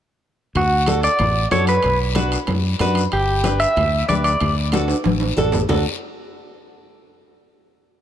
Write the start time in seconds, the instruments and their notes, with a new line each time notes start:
0.55 fingered electric bass D2, clean electric guitar F#4, high conga, low conga, high timbale, long guiro
0.86 nylon-string guitar D4 F#4 A4, high conga, high timbale, short guiro
1.03 clean electric guitar D5, high timbale, short guiro
1.19 fingered electric bass A1, high conga, low conga, high timbale, long guiro
1.51 fingered electric bass F#2, nylon-string guitar D4 F#4 A4, clean electric guitar C#5, high conga, low conga, high timbale, low timbale, short guiro
1.67 clean electric guitar B4, high timbale, short guiro
1.83 fingered electric bass B1, high conga, low conga, high timbale, long guiro
2.15 nylon-string guitar D4 F#4 B4, high conga, high timbale, short guiro
2.32 high timbale, short guiro
2.47 fingered electric bass F#2, high conga, low conga, high timbale, long guiro
2.79 fingered electric bass F#2, nylon-string guitar D4 F#4 B4, high conga, low conga, high timbale, short guiro
2.95 high timbale, short guiro
3.12 fingered electric bass G1, clean electric guitar G4, high conga, high timbale, long guiro
3.44 nylon-string guitar D4 G4 B4, high conga, high timbale, short guiro
3.60 clean electric guitar E5, high timbale, short guiro
3.76 fingered electric bass D2, high conga, low conga, high timbale, long guiro
4.08 fingered electric bass D2, nylon-string guitar D4 G4 B4, clean electric guitar D5, high conga, high timbale, short guiro
4.24 clean electric guitar D5, high timbale, short guiro
4.41 fingered electric bass D2, high conga, low conga, high timbale, long guiro
4.72 nylon-string guitar D4 F#4 A4, high conga, high timbale, short guiro
4.88 high timbale, short guiro
5.04 fingered electric bass A1, high conga, high timbale, long guiro
5.20 high timbale
5.37 fingered electric bass A1, nylon-string guitar D4 F#4 A4, low conga, short guiro
5.52 low conga, low timbale, short guiro
5.69 fingered electric bass D2, nylon-string guitar D4 F#4 A4, low conga, low timbale, long guiro